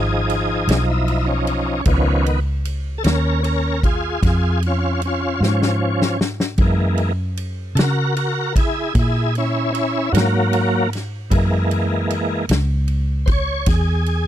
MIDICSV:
0, 0, Header, 1, 4, 480
1, 0, Start_track
1, 0, Tempo, 787402
1, 1136, Time_signature, 12, 3, 24, 8
1, 8700, End_track
2, 0, Start_track
2, 0, Title_t, "Tonewheel organ"
2, 0, Program_c, 0, 16
2, 0, Note_on_c, 0, 53, 53
2, 0, Note_on_c, 0, 63, 52
2, 0, Note_on_c, 0, 68, 83
2, 521, Note_off_c, 0, 68, 0
2, 547, Note_on_c, 0, 64, 77
2, 774, Note_off_c, 0, 64, 0
2, 776, Note_on_c, 0, 61, 69
2, 1105, Note_off_c, 0, 53, 0
2, 1105, Note_off_c, 0, 63, 0
2, 1125, Note_off_c, 0, 61, 0
2, 1142, Note_on_c, 0, 51, 59
2, 1145, Note_on_c, 0, 53, 77
2, 1150, Note_on_c, 0, 59, 61
2, 1160, Note_on_c, 0, 61, 84
2, 1374, Note_off_c, 0, 53, 0
2, 1381, Note_off_c, 0, 61, 0
2, 1459, Note_off_c, 0, 51, 0
2, 1463, Note_off_c, 0, 59, 0
2, 1817, Note_on_c, 0, 69, 55
2, 1848, Note_off_c, 0, 69, 0
2, 1852, Note_on_c, 0, 61, 73
2, 1857, Note_on_c, 0, 70, 94
2, 2077, Note_off_c, 0, 61, 0
2, 2089, Note_off_c, 0, 70, 0
2, 2092, Note_on_c, 0, 61, 77
2, 2103, Note_on_c, 0, 70, 78
2, 2317, Note_off_c, 0, 61, 0
2, 2332, Note_off_c, 0, 70, 0
2, 2345, Note_on_c, 0, 65, 68
2, 2352, Note_on_c, 0, 68, 78
2, 2564, Note_off_c, 0, 65, 0
2, 2577, Note_off_c, 0, 68, 0
2, 2590, Note_on_c, 0, 65, 67
2, 2596, Note_on_c, 0, 68, 74
2, 2807, Note_off_c, 0, 65, 0
2, 2819, Note_off_c, 0, 68, 0
2, 2843, Note_on_c, 0, 65, 76
2, 2849, Note_on_c, 0, 61, 67
2, 3057, Note_off_c, 0, 61, 0
2, 3063, Note_off_c, 0, 65, 0
2, 3081, Note_on_c, 0, 61, 67
2, 3092, Note_on_c, 0, 65, 84
2, 3293, Note_off_c, 0, 61, 0
2, 3307, Note_off_c, 0, 65, 0
2, 3317, Note_on_c, 0, 53, 79
2, 3326, Note_on_c, 0, 61, 89
2, 3763, Note_off_c, 0, 53, 0
2, 3777, Note_off_c, 0, 61, 0
2, 4028, Note_on_c, 0, 52, 52
2, 4030, Note_on_c, 0, 56, 44
2, 4035, Note_on_c, 0, 58, 55
2, 4342, Note_off_c, 0, 52, 0
2, 4343, Note_off_c, 0, 56, 0
2, 4345, Note_off_c, 0, 58, 0
2, 4727, Note_on_c, 0, 69, 66
2, 4747, Note_on_c, 0, 66, 81
2, 4752, Note_off_c, 0, 69, 0
2, 4756, Note_on_c, 0, 70, 85
2, 4965, Note_off_c, 0, 66, 0
2, 4973, Note_off_c, 0, 70, 0
2, 4978, Note_on_c, 0, 66, 68
2, 4980, Note_on_c, 0, 70, 77
2, 5200, Note_off_c, 0, 66, 0
2, 5211, Note_off_c, 0, 70, 0
2, 5226, Note_on_c, 0, 64, 76
2, 5232, Note_on_c, 0, 68, 83
2, 5445, Note_off_c, 0, 64, 0
2, 5457, Note_off_c, 0, 68, 0
2, 5482, Note_on_c, 0, 64, 68
2, 5489, Note_on_c, 0, 68, 75
2, 5693, Note_off_c, 0, 64, 0
2, 5706, Note_off_c, 0, 68, 0
2, 5716, Note_on_c, 0, 61, 85
2, 5719, Note_on_c, 0, 64, 82
2, 5918, Note_off_c, 0, 61, 0
2, 5926, Note_on_c, 0, 61, 78
2, 5930, Note_off_c, 0, 64, 0
2, 5937, Note_on_c, 0, 64, 92
2, 6154, Note_off_c, 0, 61, 0
2, 6169, Note_off_c, 0, 64, 0
2, 6172, Note_on_c, 0, 54, 91
2, 6181, Note_on_c, 0, 58, 111
2, 6629, Note_off_c, 0, 54, 0
2, 6644, Note_off_c, 0, 58, 0
2, 6890, Note_on_c, 0, 52, 55
2, 6899, Note_on_c, 0, 56, 48
2, 6903, Note_on_c, 0, 58, 56
2, 7588, Note_off_c, 0, 52, 0
2, 7592, Note_off_c, 0, 56, 0
2, 7594, Note_off_c, 0, 58, 0
2, 8082, Note_on_c, 0, 72, 68
2, 8108, Note_off_c, 0, 72, 0
2, 8118, Note_on_c, 0, 73, 101
2, 8339, Note_off_c, 0, 73, 0
2, 8343, Note_on_c, 0, 68, 75
2, 8700, Note_off_c, 0, 68, 0
2, 8700, End_track
3, 0, Start_track
3, 0, Title_t, "Fingered electric bass"
3, 0, Program_c, 1, 33
3, 0, Note_on_c, 1, 32, 76
3, 395, Note_off_c, 1, 32, 0
3, 412, Note_on_c, 1, 35, 88
3, 1112, Note_off_c, 1, 35, 0
3, 1133, Note_on_c, 1, 37, 75
3, 1833, Note_off_c, 1, 37, 0
3, 1857, Note_on_c, 1, 39, 85
3, 2555, Note_off_c, 1, 39, 0
3, 2576, Note_on_c, 1, 41, 86
3, 3275, Note_off_c, 1, 41, 0
3, 3295, Note_on_c, 1, 44, 89
3, 3994, Note_off_c, 1, 44, 0
3, 4010, Note_on_c, 1, 42, 94
3, 4712, Note_off_c, 1, 42, 0
3, 4726, Note_on_c, 1, 49, 84
3, 5429, Note_off_c, 1, 49, 0
3, 5457, Note_on_c, 1, 46, 80
3, 6155, Note_off_c, 1, 46, 0
3, 6176, Note_on_c, 1, 44, 98
3, 6874, Note_off_c, 1, 44, 0
3, 6896, Note_on_c, 1, 42, 79
3, 7593, Note_off_c, 1, 42, 0
3, 7618, Note_on_c, 1, 37, 96
3, 8314, Note_off_c, 1, 37, 0
3, 8332, Note_on_c, 1, 40, 84
3, 8700, Note_off_c, 1, 40, 0
3, 8700, End_track
4, 0, Start_track
4, 0, Title_t, "Drums"
4, 180, Note_on_c, 9, 51, 56
4, 241, Note_off_c, 9, 51, 0
4, 418, Note_on_c, 9, 51, 81
4, 433, Note_on_c, 9, 38, 96
4, 479, Note_off_c, 9, 51, 0
4, 494, Note_off_c, 9, 38, 0
4, 657, Note_on_c, 9, 51, 56
4, 718, Note_off_c, 9, 51, 0
4, 896, Note_on_c, 9, 51, 57
4, 957, Note_off_c, 9, 51, 0
4, 1130, Note_on_c, 9, 51, 82
4, 1134, Note_on_c, 9, 36, 104
4, 1191, Note_off_c, 9, 51, 0
4, 1195, Note_off_c, 9, 36, 0
4, 1380, Note_on_c, 9, 51, 66
4, 1440, Note_off_c, 9, 51, 0
4, 1617, Note_on_c, 9, 51, 63
4, 1678, Note_off_c, 9, 51, 0
4, 1854, Note_on_c, 9, 51, 77
4, 1869, Note_on_c, 9, 38, 88
4, 1915, Note_off_c, 9, 51, 0
4, 1930, Note_off_c, 9, 38, 0
4, 2098, Note_on_c, 9, 51, 69
4, 2159, Note_off_c, 9, 51, 0
4, 2337, Note_on_c, 9, 36, 80
4, 2339, Note_on_c, 9, 51, 63
4, 2398, Note_off_c, 9, 36, 0
4, 2400, Note_off_c, 9, 51, 0
4, 2576, Note_on_c, 9, 36, 112
4, 2578, Note_on_c, 9, 51, 88
4, 2593, Note_on_c, 9, 38, 29
4, 2637, Note_off_c, 9, 36, 0
4, 2639, Note_off_c, 9, 51, 0
4, 2654, Note_off_c, 9, 38, 0
4, 2819, Note_on_c, 9, 51, 63
4, 2880, Note_off_c, 9, 51, 0
4, 3058, Note_on_c, 9, 51, 54
4, 3119, Note_off_c, 9, 51, 0
4, 3310, Note_on_c, 9, 38, 61
4, 3371, Note_off_c, 9, 38, 0
4, 3427, Note_on_c, 9, 38, 65
4, 3488, Note_off_c, 9, 38, 0
4, 3668, Note_on_c, 9, 38, 70
4, 3728, Note_off_c, 9, 38, 0
4, 3785, Note_on_c, 9, 38, 82
4, 3846, Note_off_c, 9, 38, 0
4, 3902, Note_on_c, 9, 38, 72
4, 3963, Note_off_c, 9, 38, 0
4, 4009, Note_on_c, 9, 51, 64
4, 4013, Note_on_c, 9, 36, 98
4, 4070, Note_off_c, 9, 51, 0
4, 4074, Note_off_c, 9, 36, 0
4, 4251, Note_on_c, 9, 51, 58
4, 4312, Note_off_c, 9, 51, 0
4, 4494, Note_on_c, 9, 51, 64
4, 4555, Note_off_c, 9, 51, 0
4, 4735, Note_on_c, 9, 51, 73
4, 4750, Note_on_c, 9, 38, 95
4, 4796, Note_off_c, 9, 51, 0
4, 4811, Note_off_c, 9, 38, 0
4, 4977, Note_on_c, 9, 51, 66
4, 5038, Note_off_c, 9, 51, 0
4, 5216, Note_on_c, 9, 36, 83
4, 5219, Note_on_c, 9, 51, 70
4, 5277, Note_off_c, 9, 36, 0
4, 5280, Note_off_c, 9, 51, 0
4, 5455, Note_on_c, 9, 51, 91
4, 5457, Note_on_c, 9, 36, 123
4, 5516, Note_off_c, 9, 51, 0
4, 5518, Note_off_c, 9, 36, 0
4, 5700, Note_on_c, 9, 51, 55
4, 5761, Note_off_c, 9, 51, 0
4, 5941, Note_on_c, 9, 51, 64
4, 6002, Note_off_c, 9, 51, 0
4, 6184, Note_on_c, 9, 51, 90
4, 6199, Note_on_c, 9, 38, 105
4, 6245, Note_off_c, 9, 51, 0
4, 6260, Note_off_c, 9, 38, 0
4, 6418, Note_on_c, 9, 51, 65
4, 6479, Note_off_c, 9, 51, 0
4, 6662, Note_on_c, 9, 51, 58
4, 6677, Note_on_c, 9, 38, 33
4, 6723, Note_off_c, 9, 51, 0
4, 6738, Note_off_c, 9, 38, 0
4, 6897, Note_on_c, 9, 36, 95
4, 6897, Note_on_c, 9, 51, 80
4, 6958, Note_off_c, 9, 36, 0
4, 6958, Note_off_c, 9, 51, 0
4, 7138, Note_on_c, 9, 51, 61
4, 7199, Note_off_c, 9, 51, 0
4, 7378, Note_on_c, 9, 51, 61
4, 7439, Note_off_c, 9, 51, 0
4, 7613, Note_on_c, 9, 51, 80
4, 7628, Note_on_c, 9, 38, 102
4, 7674, Note_off_c, 9, 51, 0
4, 7689, Note_off_c, 9, 38, 0
4, 7849, Note_on_c, 9, 51, 57
4, 7910, Note_off_c, 9, 51, 0
4, 8091, Note_on_c, 9, 51, 63
4, 8093, Note_on_c, 9, 36, 81
4, 8152, Note_off_c, 9, 51, 0
4, 8154, Note_off_c, 9, 36, 0
4, 8328, Note_on_c, 9, 51, 89
4, 8333, Note_on_c, 9, 36, 117
4, 8343, Note_on_c, 9, 38, 35
4, 8389, Note_off_c, 9, 51, 0
4, 8394, Note_off_c, 9, 36, 0
4, 8404, Note_off_c, 9, 38, 0
4, 8572, Note_on_c, 9, 51, 61
4, 8633, Note_off_c, 9, 51, 0
4, 8700, End_track
0, 0, End_of_file